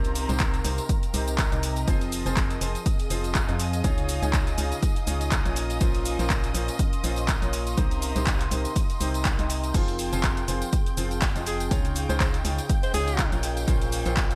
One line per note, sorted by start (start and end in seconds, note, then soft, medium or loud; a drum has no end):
0.00 0.26 C2 loud
0.00 0.26 C3 loud
0.00 3.84 C4 medium
0.00 0.26 D#4 loud
0.00 0.26 G4 loud
0.00 0.26 A#4 loud
0.00 1.88 A#4 medium
0.00 2.67 A#4 medium
0.00 0.26 C5 loud
0.00 0.70 F5 medium
0.00 1.89 A#5 medium
0.00 0.70 C6 medium
0.00 tambourine soft
0.05 closed hi-hat soft
0.05 shaker soft
0.15 open hi-hat loud
0.15 shaker medium
0.29 0.62 C2 loud
0.29 0.55 C3 medium
0.29 0.55 D#4 medium
0.29 0.55 G4 medium
0.29 0.55 A#4 medium
0.29 0.55 C5 loud
0.29 closed hi-hat soft
0.29 tambourine medium
0.29 shaker soft
0.39 kick loud
0.39 clap loud
0.39 closed hi-hat medium
0.39 tambourine medium
0.39 shaker soft
0.54 2.67 D#5 medium
0.54 closed hi-hat soft
0.54 tambourine soft
0.54 shaker soft
0.65 0.79 C2 loud
0.65 0.82 C3 medium
0.65 0.82 D#4 medium
0.65 0.82 G4 medium
0.65 0.82 A#4 medium
0.65 0.82 C5 medium
0.65 open hi-hat loud
0.65 shaker medium
0.78 1.87 G5 medium
0.78 closed hi-hat soft
0.78 tambourine medium
0.78 shaker soft
0.89 kick loud
0.89 closed hi-hat medium
0.89 tambourine medium
0.89 shaker soft
1.03 closed hi-hat soft
1.03 tambourine soft
1.03 shaker soft
1.14 1.49 C2 medium
1.14 1.40 C3 medium
1.14 1.40 D#4 medium
1.14 1.40 G4 medium
1.14 1.40 A#4 medium
1.14 1.40 C5 medium
1.14 open hi-hat loud
1.14 shaker medium
1.27 closed hi-hat soft
1.27 tambourine medium
1.27 shaker soft
1.38 kick loud
1.38 clap loud
1.38 closed hi-hat medium
1.38 tambourine medium
1.38 shaker soft
1.52 1.85 C2 loud
1.52 1.85 C3 medium
1.52 1.85 D#4 medium
1.52 1.85 G4 medium
1.52 1.85 A#4 medium
1.52 1.85 D#5 medium
1.52 closed hi-hat soft
1.52 tambourine soft
1.52 shaker soft
1.63 open hi-hat loud
1.63 shaker medium
1.76 closed hi-hat soft
1.76 tambourine medium
1.76 shaker soft
1.87 2.23 F1 loud
1.87 2.23 F3 loud
1.87 2.23 C4 medium
1.87 2.23 F4 medium
1.87 2.23 G#4 medium
1.87 2.23 C5 loud
1.87 9.76 D#5 medium
1.87 9.75 D#6 medium
1.87 kick loud
1.87 closed hi-hat medium
1.87 tambourine medium
1.87 shaker soft
2.01 closed hi-hat soft
2.01 tambourine soft
2.01 shaker soft
2.12 open hi-hat loud
2.12 shaker medium
2.26 2.59 F1 loud
2.26 2.51 F3 medium
2.26 2.51 C4 medium
2.26 2.51 F4 medium
2.26 2.51 G#4 medium
2.26 2.51 C5 loud
2.26 closed hi-hat soft
2.26 tambourine medium
2.26 shaker soft
2.37 kick loud
2.37 clap loud
2.37 closed hi-hat medium
2.37 tambourine medium
2.37 shaker soft
2.50 4.54 G#4 medium
2.50 closed hi-hat soft
2.50 tambourine soft
2.50 shaker soft
2.61 2.76 F1 loud
2.61 2.78 F3 medium
2.61 2.78 C4 medium
2.61 2.78 F4 medium
2.61 2.78 G#4 medium
2.61 2.78 C5 medium
2.61 open hi-hat loud
2.61 shaker medium
2.75 8.57 F5 medium
2.75 6.46 G#5 medium
2.75 closed hi-hat soft
2.75 tambourine medium
2.75 shaker soft
2.86 kick loud
2.86 closed hi-hat medium
2.86 tambourine medium
2.86 shaker soft
2.99 closed hi-hat soft
2.99 tambourine soft
2.99 shaker soft
3.10 3.46 F1 loud
3.10 3.36 F3 medium
3.10 3.36 C4 medium
3.10 3.36 F4 medium
3.10 3.36 G#4 medium
3.10 3.36 C5 medium
3.10 open hi-hat loud
3.10 shaker medium
3.24 closed hi-hat soft
3.24 tambourine medium
3.24 shaker soft
3.35 kick loud
3.35 clap loud
3.35 closed hi-hat medium
3.35 tambourine medium
3.35 shaker soft
3.49 3.82 F2 medium
3.49 3.82 F3 medium
3.49 3.82 C4 medium
3.49 3.82 F4 medium
3.49 3.82 G#4 medium
3.49 3.82 D#5 medium
3.49 closed hi-hat soft
3.49 tambourine soft
3.49 shaker soft
3.60 open hi-hat loud
3.60 shaker medium
3.73 closed hi-hat soft
3.73 tambourine medium
3.73 shaker soft
3.84 4.20 C#2 loud
3.84 4.19 C#3 loud
3.84 6.46 D#4 medium
3.84 4.19 D#4 medium
3.84 4.19 F4 loud
3.84 4.19 G#4 loud
3.84 4.19 C#5 loud
3.84 kick loud
3.84 closed hi-hat medium
3.84 tambourine medium
3.84 shaker soft
3.98 closed hi-hat soft
3.98 tambourine soft
3.98 shaker soft
4.06 6.17 D#5 medium
4.06 open hi-hat loud
4.06 shaker medium
4.22 4.56 C#2 loud
4.22 4.48 C#3 medium
4.22 4.48 D#4 medium
4.22 4.48 F4 medium
4.22 4.48 G#4 medium
4.22 4.48 C#5 loud
4.22 closed hi-hat soft
4.22 tambourine medium
4.22 shaker soft
4.33 kick loud
4.33 clap loud
4.33 closed hi-hat medium
4.33 tambourine medium
4.33 shaker soft
4.47 closed hi-hat soft
4.47 tambourine soft
4.47 shaker soft
4.58 4.73 C#2 loud
4.58 4.75 C#3 medium
4.58 4.75 D#4 medium
4.58 4.75 F4 medium
4.58 4.75 G#4 medium
4.58 4.75 C#5 medium
4.58 open hi-hat loud
4.58 shaker medium
4.72 closed hi-hat soft
4.72 tambourine medium
4.72 shaker soft
4.83 kick loud
4.83 closed hi-hat medium
4.83 tambourine medium
4.83 shaker soft
4.96 closed hi-hat soft
4.96 tambourine soft
4.96 shaker soft
5.07 5.43 C#2 loud
5.07 5.33 C#3 medium
5.07 5.33 D#4 medium
5.07 5.33 F4 medium
5.07 5.33 G#4 medium
5.07 5.33 C#5 medium
5.07 open hi-hat loud
5.07 shaker medium
5.21 closed hi-hat soft
5.21 tambourine medium
5.21 shaker soft
5.31 kick loud
5.31 clap loud
5.31 closed hi-hat medium
5.31 tambourine medium
5.31 shaker soft
5.45 5.79 A#1 loud
5.45 5.78 A#2 medium
5.45 5.78 C#4 medium
5.45 5.78 F4 medium
5.45 5.78 A#4 medium
5.45 5.78 C#5 medium
5.45 closed hi-hat soft
5.45 tambourine soft
5.45 shaker soft
5.56 7.78 C#4 medium
5.56 open hi-hat loud
5.56 shaker medium
5.70 closed hi-hat soft
5.70 tambourine medium
5.70 shaker soft
5.76 10.54 A#4 medium
5.80 6.16 A#1 loud
5.80 6.16 A#2 loud
5.80 6.16 C#4 medium
5.80 6.16 F4 medium
5.80 6.16 A#4 loud
5.80 6.16 C5 loud
5.80 kick loud
5.80 closed hi-hat medium
5.80 tambourine medium
5.80 shaker soft
5.94 closed hi-hat soft
5.94 tambourine soft
5.94 shaker soft
6.05 open hi-hat loud
6.05 shaker medium
6.19 6.52 A#1 loud
6.19 6.45 A#2 medium
6.19 6.45 C#4 medium
6.19 6.45 F4 medium
6.19 6.45 A#4 medium
6.19 6.45 C5 loud
6.19 closed hi-hat soft
6.19 tambourine medium
6.19 shaker soft
6.30 kick loud
6.30 clap loud
6.30 closed hi-hat medium
6.30 tambourine medium
6.30 shaker soft
6.44 closed hi-hat soft
6.44 tambourine soft
6.44 shaker soft
6.54 6.69 A#1 loud
6.54 6.72 A#2 medium
6.54 6.72 C#4 medium
6.54 6.72 F4 medium
6.54 6.72 A#4 medium
6.54 6.72 C5 medium
6.54 12.41 C6 medium
6.54 open hi-hat loud
6.54 shaker medium
6.68 closed hi-hat soft
6.68 tambourine medium
6.68 shaker soft
6.79 kick loud
6.79 closed hi-hat medium
6.79 tambourine medium
6.79 shaker medium
6.93 closed hi-hat soft
6.93 tambourine soft
6.93 shaker soft
7.04 7.39 A#1 loud
7.04 7.30 A#2 medium
7.04 7.30 C#4 medium
7.04 7.30 F4 medium
7.04 7.30 A#4 medium
7.04 7.30 C5 medium
7.04 open hi-hat loud
7.04 shaker medium
7.16 closed hi-hat soft
7.16 tambourine medium
7.16 shaker soft
7.28 kick loud
7.28 clap loud
7.28 closed hi-hat medium
7.28 tambourine medium
7.28 shaker soft
7.42 7.75 A#1 loud
7.42 7.75 A#2 medium
7.42 7.75 C#4 medium
7.42 7.75 F4 medium
7.42 7.75 A#4 medium
7.42 7.75 C#5 medium
7.42 closed hi-hat soft
7.42 tambourine soft
7.42 shaker soft
7.53 open hi-hat loud
7.53 shaker medium
7.67 closed hi-hat soft
7.67 tambourine medium
7.67 shaker soft
7.77 8.13 C2 loud
7.77 8.13 C3 loud
7.77 8.13 D#4 loud
7.77 10.54 D#4 medium
7.77 8.13 G4 medium
7.77 8.13 A#4 medium
7.77 8.13 C5 loud
7.77 kick loud
7.77 closed hi-hat medium
7.77 tambourine medium
7.77 shaker soft
7.91 closed hi-hat soft
7.91 tambourine soft
7.91 shaker soft
8.02 open hi-hat loud
8.02 shaker medium
8.16 8.49 C2 loud
8.16 8.41 C3 medium
8.16 8.41 D#4 medium
8.16 8.41 G4 medium
8.16 8.41 A#4 medium
8.16 8.41 C5 loud
8.16 closed hi-hat soft
8.16 tambourine medium
8.16 shaker soft
8.27 kick loud
8.27 clap loud
8.27 closed hi-hat medium
8.27 tambourine medium
8.27 shaker soft
8.40 clap soft
8.40 closed hi-hat soft
8.40 tambourine soft
8.40 shaker soft
8.51 8.66 C2 loud
8.51 8.68 C3 medium
8.51 8.68 D#4 medium
8.51 8.68 G4 medium
8.51 8.68 A#4 medium
8.51 8.68 C5 medium
8.51 open hi-hat loud
8.51 shaker medium
8.61 10.54 G5 medium
8.61 closed hi-hat soft
8.61 tambourine medium
8.61 shaker soft
8.75 kick loud
8.75 closed hi-hat medium
8.75 tambourine medium
8.75 shaker soft
8.90 closed hi-hat soft
8.90 tambourine soft
8.90 shaker soft
9.01 9.36 C2 medium
9.01 9.26 C3 medium
9.01 9.26 D#4 medium
9.01 9.26 G4 medium
9.01 9.26 A#4 medium
9.01 9.26 C5 medium
9.01 open hi-hat loud
9.01 shaker medium
9.14 closed hi-hat soft
9.14 tambourine medium
9.14 shaker soft
9.25 kick loud
9.25 clap loud
9.25 closed hi-hat medium
9.25 tambourine medium
9.25 shaker medium
9.39 9.72 C2 medium
9.39 9.72 C3 medium
9.39 9.72 D#4 medium
9.39 9.72 G4 medium
9.39 9.72 A#4 medium
9.39 9.72 D#5 medium
9.39 closed hi-hat soft
9.39 tambourine soft
9.39 shaker soft
9.50 open hi-hat loud
9.50 shaker medium
9.64 closed hi-hat soft
9.64 tambourine medium
9.64 shaker soft
9.74 10.10 F1 loud
9.74 10.09 F3 loud
9.74 11.71 C4 medium
9.74 10.09 C4 medium
9.74 10.09 F4 loud
9.74 10.09 G#4 medium
9.74 10.09 C5 loud
9.74 14.35 G5 medium
9.74 14.35 G6 medium
9.74 kick loud
9.74 closed hi-hat medium
9.74 crash medium
9.74 tambourine medium
9.74 shaker soft
9.88 closed hi-hat soft
9.88 tambourine soft
9.88 shaker soft
9.99 open hi-hat loud
9.99 shaker medium
10.13 10.46 F1 loud
10.13 10.38 F3 medium
10.13 10.38 C4 medium
10.13 10.38 F4 medium
10.13 10.38 G#4 medium
10.13 10.38 C5 loud
10.13 closed hi-hat soft
10.13 tambourine medium
10.13 shaker soft
10.24 14.33 G#4 medium
10.24 kick loud
10.24 clap loud
10.24 closed hi-hat medium
10.24 tambourine medium
10.24 shaker soft
10.37 closed hi-hat soft
10.37 tambourine soft
10.37 shaker soft
10.48 10.63 F1 loud
10.48 10.65 F3 medium
10.48 10.65 C4 medium
10.48 10.65 F4 medium
10.48 10.65 G#4 medium
10.48 10.65 C5 medium
10.48 open hi-hat loud
10.48 shaker medium
10.62 14.35 F5 medium
10.62 closed hi-hat soft
10.62 tambourine medium
10.62 shaker soft
10.73 kick loud
10.73 closed hi-hat medium
10.73 tambourine medium
10.73 shaker soft
10.86 closed hi-hat soft
10.86 tambourine soft
10.86 shaker soft
10.97 11.33 F1 medium
10.97 11.23 F3 medium
10.97 11.23 C4 medium
10.97 11.23 F4 medium
10.97 11.23 G#4 medium
10.97 11.23 C5 medium
10.97 open hi-hat loud
10.97 shaker medium
11.11 closed hi-hat soft
11.11 tambourine medium
11.11 shaker soft
11.21 kick loud
11.21 clap loud
11.21 closed hi-hat medium
11.21 tambourine medium
11.21 shaker soft
11.36 11.69 F1 loud
11.36 11.69 F3 medium
11.36 11.69 C4 medium
11.36 11.69 F4 medium
11.36 11.69 G#4 medium
11.36 11.69 D#5 medium
11.36 closed hi-hat soft
11.36 tambourine soft
11.36 shaker soft
11.47 11.64 G#4 medium
11.47 open hi-hat loud
11.47 shaker medium
11.60 closed hi-hat soft
11.60 tambourine medium
11.60 shaker soft
11.71 12.07 C#2 loud
11.71 12.06 C#3 loud
11.71 14.35 C#4 medium
11.71 12.06 D#4 medium
11.71 12.06 F4 loud
11.71 12.06 G#4 medium
11.71 12.06 C#5 loud
11.71 kick loud
11.71 closed hi-hat medium
11.71 tambourine medium
11.71 shaker soft
11.85 closed hi-hat soft
11.85 tambourine soft
11.85 shaker soft
11.96 14.33 D#5 medium
11.96 open hi-hat loud
11.96 shaker medium
12.09 12.43 C#2 loud
12.09 12.35 C#3 medium
12.09 12.35 D#4 medium
12.09 12.35 F4 medium
12.09 12.35 G#4 medium
12.09 12.16 C5 loud
12.09 12.35 C#5 loud
12.09 closed hi-hat soft
12.09 tambourine medium
12.09 shaker soft
12.20 12.29 C5 medium
12.20 kick loud
12.20 clap loud
12.20 closed hi-hat medium
12.20 tambourine medium
12.20 shaker soft
12.34 closed hi-hat soft
12.34 tambourine soft
12.34 shaker soft
12.45 12.60 C#2 medium
12.45 12.62 C#3 medium
12.45 12.62 D#4 medium
12.45 12.62 F4 medium
12.45 12.62 G#4 medium
12.45 12.62 C#5 medium
12.45 open hi-hat loud
12.45 shaker medium
12.58 closed hi-hat soft
12.58 tambourine medium
12.58 shaker soft
12.69 kick loud
12.69 closed hi-hat medium
12.69 tambourine medium
12.69 shaker soft
12.83 12.92 C5 medium
12.83 closed hi-hat soft
12.83 tambourine soft
12.83 shaker soft
12.94 13.30 C#2 medium
12.94 13.20 C#3 medium
12.94 13.20 D#4 medium
12.94 13.20 F4 medium
12.94 13.20 G#4 medium
12.94 13.32 G#4 loud
12.94 13.20 C#5 medium
12.94 open hi-hat loud
12.94 shaker medium
13.07 closed hi-hat soft
13.07 tambourine medium
13.07 shaker soft
13.19 kick loud
13.19 clap loud
13.19 closed hi-hat medium
13.19 tambourine medium
13.19 shaker soft
13.32 13.66 A#1 loud
13.32 13.65 A#2 medium
13.32 13.65 C#4 medium
13.32 13.65 F4 medium
13.32 13.65 A#4 medium
13.32 13.65 C#5 medium
13.32 closed hi-hat soft
13.32 tambourine soft
13.32 shaker soft
13.43 open hi-hat loud
13.43 shaker medium
13.57 closed hi-hat soft
13.57 tambourine medium
13.57 shaker soft
13.68 14.03 A#1 loud
13.68 14.03 A#2 loud
13.68 14.03 C#4 medium
13.68 14.03 F4 medium
13.68 14.03 A#4 loud
13.68 14.03 C5 loud
13.68 kick loud
13.68 closed hi-hat medium
13.68 tambourine medium
13.68 shaker soft
13.81 closed hi-hat soft
13.81 tambourine soft
13.81 shaker soft
13.92 14.35 A#4 medium
13.92 open hi-hat loud
13.92 shaker medium
14.05 14.35 A#1 loud
14.05 14.31 A#2 medium
14.05 14.31 C#4 medium
14.05 14.32 F4 medium
14.05 14.32 A#4 medium
14.05 14.31 C5 loud
14.05 14.35 C6 medium
14.05 closed hi-hat soft
14.05 tambourine medium
14.05 shaker soft
14.17 kick loud
14.17 clap loud
14.17 closed hi-hat medium
14.17 tambourine medium
14.17 shaker soft
14.31 closed hi-hat soft
14.31 tambourine soft
14.31 shaker soft